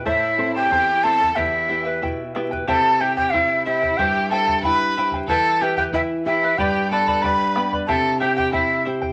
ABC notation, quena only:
X:1
M:2/4
L:1/16
Q:1/4=92
K:Clyd
V:1 name="Quena"
e3 g3 a2 | e4 z4 | a2 g g e2 e2 | g2 a2 b3 z |
a2 g g e2 e2 | g2 a2 b3 z | a2 g g e2 z2 |]